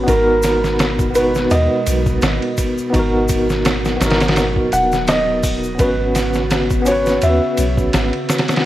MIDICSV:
0, 0, Header, 1, 7, 480
1, 0, Start_track
1, 0, Key_signature, 5, "minor"
1, 0, Tempo, 714286
1, 53, Time_signature, 4, 2, 24, 8
1, 5814, End_track
2, 0, Start_track
2, 0, Title_t, "Felt piano"
2, 0, Program_c, 0, 0
2, 57, Note_on_c, 0, 70, 81
2, 748, Note_off_c, 0, 70, 0
2, 775, Note_on_c, 0, 71, 87
2, 1016, Note_on_c, 0, 75, 87
2, 1021, Note_off_c, 0, 71, 0
2, 1708, Note_off_c, 0, 75, 0
2, 3177, Note_on_c, 0, 78, 98
2, 3398, Note_off_c, 0, 78, 0
2, 3419, Note_on_c, 0, 75, 102
2, 3869, Note_off_c, 0, 75, 0
2, 3899, Note_on_c, 0, 71, 87
2, 4620, Note_on_c, 0, 73, 86
2, 4637, Note_off_c, 0, 71, 0
2, 4861, Note_on_c, 0, 76, 82
2, 4863, Note_off_c, 0, 73, 0
2, 5550, Note_off_c, 0, 76, 0
2, 5814, End_track
3, 0, Start_track
3, 0, Title_t, "Tine electric piano"
3, 0, Program_c, 1, 4
3, 0, Control_c, 1, 64, 127
3, 0, Note_on_c, 1, 59, 77
3, 24, Note_off_c, 1, 59, 0
3, 24, Note_on_c, 1, 59, 94
3, 44, Note_on_c, 1, 63, 83
3, 62, Control_c, 1, 64, 0
3, 67, Note_on_c, 1, 66, 80
3, 89, Note_on_c, 1, 70, 103
3, 171, Control_c, 1, 64, 127
3, 733, Note_off_c, 1, 59, 0
3, 743, Note_off_c, 1, 63, 0
3, 743, Note_on_c, 1, 59, 82
3, 754, Note_off_c, 1, 66, 0
3, 765, Note_off_c, 1, 70, 0
3, 766, Note_on_c, 1, 63, 80
3, 788, Note_on_c, 1, 66, 84
3, 807, Note_on_c, 1, 71, 95
3, 1932, Note_off_c, 1, 59, 0
3, 1944, Note_off_c, 1, 63, 0
3, 1948, Note_on_c, 1, 59, 89
3, 1955, Note_off_c, 1, 66, 0
3, 1965, Note_off_c, 1, 71, 0
3, 1967, Note_on_c, 1, 63, 90
3, 1990, Note_on_c, 1, 66, 90
3, 2011, Note_on_c, 1, 70, 102
3, 2655, Note_off_c, 1, 59, 0
3, 2664, Note_off_c, 1, 63, 0
3, 2666, Note_on_c, 1, 59, 89
3, 2676, Note_off_c, 1, 66, 0
3, 2686, Note_off_c, 1, 70, 0
3, 2688, Note_on_c, 1, 63, 80
3, 2707, Note_on_c, 1, 66, 83
3, 2731, Note_on_c, 1, 70, 101
3, 3854, Note_off_c, 1, 59, 0
3, 3862, Note_on_c, 1, 59, 96
3, 3865, Note_off_c, 1, 63, 0
3, 3874, Note_off_c, 1, 66, 0
3, 3883, Note_on_c, 1, 61, 86
3, 3886, Note_off_c, 1, 70, 0
3, 3903, Control_c, 1, 64, 0
3, 3904, Note_on_c, 1, 66, 86
3, 3926, Note_on_c, 1, 71, 105
3, 4008, Control_c, 1, 64, 127
3, 4572, Note_off_c, 1, 59, 0
3, 4582, Note_off_c, 1, 61, 0
3, 4585, Note_on_c, 1, 59, 91
3, 4593, Note_off_c, 1, 66, 0
3, 4604, Note_off_c, 1, 71, 0
3, 4605, Note_on_c, 1, 61, 78
3, 4629, Note_on_c, 1, 66, 81
3, 4647, Note_on_c, 1, 71, 102
3, 5773, Note_off_c, 1, 59, 0
3, 5783, Note_off_c, 1, 61, 0
3, 5784, Note_on_c, 1, 59, 97
3, 5795, Note_off_c, 1, 66, 0
3, 5805, Note_off_c, 1, 71, 0
3, 5814, Note_off_c, 1, 59, 0
3, 5814, End_track
4, 0, Start_track
4, 0, Title_t, "Synth texture"
4, 0, Program_c, 2, 99
4, 0, Note_on_c, 2, 59, 82
4, 5814, Note_off_c, 2, 59, 0
4, 5814, End_track
5, 0, Start_track
5, 0, Title_t, "Ambient pad"
5, 0, Program_c, 3, 92
5, 54, Note_on_c, 3, 56, 71
5, 55, Note_on_c, 3, 47, 72
5, 55, Note_on_c, 3, 66, 82
5, 1954, Note_off_c, 3, 56, 0
5, 1971, Note_on_c, 3, 54, 68
5, 3867, Note_off_c, 3, 47, 0
5, 3873, Note_off_c, 3, 54, 0
5, 3891, Note_on_c, 3, 59, 67
5, 3893, Note_on_c, 3, 49, 73
5, 5814, Note_off_c, 3, 49, 0
5, 5814, Note_off_c, 3, 59, 0
5, 5814, Note_off_c, 3, 66, 0
5, 5814, End_track
6, 0, Start_track
6, 0, Title_t, "808-style bass"
6, 0, Program_c, 4, 38
6, 52, Note_on_c, 4, 32, 95
6, 992, Note_off_c, 4, 32, 0
6, 1015, Note_on_c, 4, 39, 84
6, 1131, Note_off_c, 4, 39, 0
6, 1257, Note_on_c, 4, 35, 86
6, 1469, Note_off_c, 4, 35, 0
6, 1491, Note_on_c, 4, 32, 88
6, 1609, Note_off_c, 4, 32, 0
6, 1975, Note_on_c, 4, 32, 103
6, 2673, Note_off_c, 4, 32, 0
6, 2695, Note_on_c, 4, 32, 88
6, 3153, Note_off_c, 4, 32, 0
6, 3178, Note_on_c, 4, 27, 77
6, 3875, Note_off_c, 4, 27, 0
6, 3895, Note_on_c, 4, 32, 104
6, 4834, Note_off_c, 4, 32, 0
6, 4857, Note_on_c, 4, 39, 77
6, 4972, Note_off_c, 4, 39, 0
6, 5096, Note_on_c, 4, 35, 85
6, 5309, Note_off_c, 4, 35, 0
6, 5338, Note_on_c, 4, 32, 86
6, 5452, Note_off_c, 4, 32, 0
6, 5814, End_track
7, 0, Start_track
7, 0, Title_t, "Drums"
7, 52, Note_on_c, 9, 82, 42
7, 53, Note_on_c, 9, 36, 106
7, 53, Note_on_c, 9, 51, 84
7, 120, Note_off_c, 9, 36, 0
7, 120, Note_off_c, 9, 51, 0
7, 120, Note_off_c, 9, 82, 0
7, 286, Note_on_c, 9, 82, 89
7, 293, Note_on_c, 9, 51, 66
7, 299, Note_on_c, 9, 38, 54
7, 353, Note_off_c, 9, 82, 0
7, 360, Note_off_c, 9, 51, 0
7, 366, Note_off_c, 9, 38, 0
7, 431, Note_on_c, 9, 38, 39
7, 431, Note_on_c, 9, 82, 32
7, 498, Note_off_c, 9, 38, 0
7, 498, Note_off_c, 9, 82, 0
7, 532, Note_on_c, 9, 51, 77
7, 534, Note_on_c, 9, 82, 44
7, 538, Note_on_c, 9, 38, 110
7, 599, Note_off_c, 9, 51, 0
7, 601, Note_off_c, 9, 82, 0
7, 605, Note_off_c, 9, 38, 0
7, 666, Note_on_c, 9, 36, 99
7, 666, Note_on_c, 9, 82, 37
7, 733, Note_off_c, 9, 36, 0
7, 733, Note_off_c, 9, 82, 0
7, 772, Note_on_c, 9, 82, 69
7, 775, Note_on_c, 9, 51, 66
7, 839, Note_off_c, 9, 82, 0
7, 842, Note_off_c, 9, 51, 0
7, 905, Note_on_c, 9, 82, 34
7, 913, Note_on_c, 9, 38, 40
7, 972, Note_off_c, 9, 82, 0
7, 980, Note_off_c, 9, 38, 0
7, 1010, Note_on_c, 9, 82, 45
7, 1015, Note_on_c, 9, 51, 82
7, 1077, Note_off_c, 9, 82, 0
7, 1082, Note_off_c, 9, 51, 0
7, 1253, Note_on_c, 9, 51, 68
7, 1256, Note_on_c, 9, 82, 94
7, 1321, Note_off_c, 9, 51, 0
7, 1323, Note_off_c, 9, 82, 0
7, 1385, Note_on_c, 9, 82, 40
7, 1386, Note_on_c, 9, 36, 91
7, 1452, Note_off_c, 9, 82, 0
7, 1453, Note_off_c, 9, 36, 0
7, 1490, Note_on_c, 9, 82, 45
7, 1494, Note_on_c, 9, 51, 86
7, 1500, Note_on_c, 9, 38, 119
7, 1558, Note_off_c, 9, 82, 0
7, 1561, Note_off_c, 9, 51, 0
7, 1567, Note_off_c, 9, 38, 0
7, 1628, Note_on_c, 9, 51, 42
7, 1696, Note_off_c, 9, 51, 0
7, 1730, Note_on_c, 9, 82, 85
7, 1732, Note_on_c, 9, 51, 66
7, 1733, Note_on_c, 9, 36, 87
7, 1797, Note_off_c, 9, 82, 0
7, 1800, Note_off_c, 9, 36, 0
7, 1800, Note_off_c, 9, 51, 0
7, 1868, Note_on_c, 9, 82, 36
7, 1936, Note_off_c, 9, 82, 0
7, 1973, Note_on_c, 9, 36, 110
7, 1975, Note_on_c, 9, 51, 89
7, 1975, Note_on_c, 9, 82, 42
7, 2040, Note_off_c, 9, 36, 0
7, 2042, Note_off_c, 9, 82, 0
7, 2043, Note_off_c, 9, 51, 0
7, 2207, Note_on_c, 9, 82, 82
7, 2213, Note_on_c, 9, 36, 87
7, 2214, Note_on_c, 9, 51, 66
7, 2274, Note_off_c, 9, 82, 0
7, 2280, Note_off_c, 9, 36, 0
7, 2281, Note_off_c, 9, 51, 0
7, 2348, Note_on_c, 9, 82, 35
7, 2353, Note_on_c, 9, 38, 41
7, 2415, Note_off_c, 9, 82, 0
7, 2420, Note_off_c, 9, 38, 0
7, 2453, Note_on_c, 9, 51, 88
7, 2453, Note_on_c, 9, 82, 46
7, 2459, Note_on_c, 9, 38, 117
7, 2520, Note_off_c, 9, 51, 0
7, 2520, Note_off_c, 9, 82, 0
7, 2526, Note_off_c, 9, 38, 0
7, 2586, Note_on_c, 9, 82, 36
7, 2592, Note_on_c, 9, 38, 47
7, 2654, Note_off_c, 9, 82, 0
7, 2659, Note_off_c, 9, 38, 0
7, 2692, Note_on_c, 9, 51, 62
7, 2698, Note_on_c, 9, 38, 88
7, 2698, Note_on_c, 9, 82, 83
7, 2759, Note_off_c, 9, 51, 0
7, 2759, Note_on_c, 9, 51, 64
7, 2765, Note_off_c, 9, 38, 0
7, 2765, Note_off_c, 9, 82, 0
7, 2765, Note_on_c, 9, 38, 83
7, 2825, Note_off_c, 9, 51, 0
7, 2825, Note_on_c, 9, 51, 61
7, 2831, Note_off_c, 9, 38, 0
7, 2831, Note_on_c, 9, 38, 83
7, 2831, Note_on_c, 9, 82, 33
7, 2878, Note_off_c, 9, 51, 0
7, 2878, Note_on_c, 9, 51, 61
7, 2884, Note_off_c, 9, 38, 0
7, 2884, Note_on_c, 9, 38, 79
7, 2898, Note_off_c, 9, 82, 0
7, 2931, Note_off_c, 9, 51, 0
7, 2931, Note_on_c, 9, 51, 68
7, 2935, Note_on_c, 9, 82, 44
7, 2937, Note_off_c, 9, 38, 0
7, 2937, Note_on_c, 9, 38, 96
7, 2998, Note_off_c, 9, 51, 0
7, 3002, Note_off_c, 9, 82, 0
7, 3004, Note_off_c, 9, 38, 0
7, 3065, Note_on_c, 9, 36, 86
7, 3132, Note_off_c, 9, 36, 0
7, 3172, Note_on_c, 9, 51, 56
7, 3178, Note_on_c, 9, 82, 83
7, 3239, Note_off_c, 9, 51, 0
7, 3246, Note_off_c, 9, 82, 0
7, 3306, Note_on_c, 9, 82, 36
7, 3312, Note_on_c, 9, 38, 39
7, 3373, Note_off_c, 9, 82, 0
7, 3379, Note_off_c, 9, 38, 0
7, 3409, Note_on_c, 9, 82, 48
7, 3411, Note_on_c, 9, 51, 87
7, 3417, Note_on_c, 9, 38, 111
7, 3477, Note_off_c, 9, 82, 0
7, 3478, Note_off_c, 9, 51, 0
7, 3484, Note_off_c, 9, 38, 0
7, 3651, Note_on_c, 9, 82, 81
7, 3652, Note_on_c, 9, 36, 90
7, 3652, Note_on_c, 9, 46, 76
7, 3718, Note_off_c, 9, 82, 0
7, 3719, Note_off_c, 9, 36, 0
7, 3720, Note_off_c, 9, 46, 0
7, 3788, Note_on_c, 9, 82, 38
7, 3855, Note_off_c, 9, 82, 0
7, 3891, Note_on_c, 9, 82, 42
7, 3892, Note_on_c, 9, 36, 114
7, 3892, Note_on_c, 9, 51, 87
7, 3958, Note_off_c, 9, 82, 0
7, 3959, Note_off_c, 9, 51, 0
7, 3960, Note_off_c, 9, 36, 0
7, 4132, Note_on_c, 9, 51, 68
7, 4135, Note_on_c, 9, 82, 78
7, 4138, Note_on_c, 9, 38, 57
7, 4200, Note_off_c, 9, 51, 0
7, 4202, Note_off_c, 9, 82, 0
7, 4206, Note_off_c, 9, 38, 0
7, 4258, Note_on_c, 9, 82, 31
7, 4271, Note_on_c, 9, 38, 43
7, 4325, Note_off_c, 9, 82, 0
7, 4338, Note_off_c, 9, 38, 0
7, 4371, Note_on_c, 9, 82, 42
7, 4372, Note_on_c, 9, 51, 84
7, 4378, Note_on_c, 9, 38, 106
7, 4438, Note_off_c, 9, 82, 0
7, 4439, Note_off_c, 9, 51, 0
7, 4445, Note_off_c, 9, 38, 0
7, 4503, Note_on_c, 9, 82, 35
7, 4506, Note_on_c, 9, 36, 99
7, 4570, Note_off_c, 9, 82, 0
7, 4573, Note_off_c, 9, 36, 0
7, 4609, Note_on_c, 9, 82, 77
7, 4612, Note_on_c, 9, 51, 66
7, 4676, Note_off_c, 9, 82, 0
7, 4679, Note_off_c, 9, 51, 0
7, 4743, Note_on_c, 9, 82, 38
7, 4751, Note_on_c, 9, 38, 41
7, 4811, Note_off_c, 9, 82, 0
7, 4818, Note_off_c, 9, 38, 0
7, 4849, Note_on_c, 9, 82, 47
7, 4850, Note_on_c, 9, 51, 77
7, 4916, Note_off_c, 9, 82, 0
7, 4917, Note_off_c, 9, 51, 0
7, 5090, Note_on_c, 9, 51, 64
7, 5092, Note_on_c, 9, 82, 88
7, 5157, Note_off_c, 9, 51, 0
7, 5160, Note_off_c, 9, 82, 0
7, 5225, Note_on_c, 9, 36, 87
7, 5227, Note_on_c, 9, 82, 37
7, 5292, Note_off_c, 9, 36, 0
7, 5294, Note_off_c, 9, 82, 0
7, 5330, Note_on_c, 9, 51, 90
7, 5333, Note_on_c, 9, 82, 45
7, 5336, Note_on_c, 9, 38, 114
7, 5397, Note_off_c, 9, 51, 0
7, 5400, Note_off_c, 9, 82, 0
7, 5403, Note_off_c, 9, 38, 0
7, 5463, Note_on_c, 9, 51, 43
7, 5531, Note_off_c, 9, 51, 0
7, 5569, Note_on_c, 9, 51, 68
7, 5575, Note_on_c, 9, 38, 85
7, 5575, Note_on_c, 9, 82, 77
7, 5634, Note_off_c, 9, 51, 0
7, 5634, Note_on_c, 9, 51, 62
7, 5640, Note_off_c, 9, 38, 0
7, 5640, Note_on_c, 9, 38, 89
7, 5643, Note_off_c, 9, 82, 0
7, 5700, Note_off_c, 9, 51, 0
7, 5700, Note_on_c, 9, 51, 63
7, 5706, Note_off_c, 9, 38, 0
7, 5706, Note_on_c, 9, 38, 87
7, 5713, Note_on_c, 9, 82, 34
7, 5754, Note_off_c, 9, 51, 0
7, 5754, Note_on_c, 9, 51, 57
7, 5760, Note_off_c, 9, 38, 0
7, 5760, Note_on_c, 9, 38, 79
7, 5780, Note_off_c, 9, 82, 0
7, 5814, Note_off_c, 9, 38, 0
7, 5814, Note_off_c, 9, 51, 0
7, 5814, End_track
0, 0, End_of_file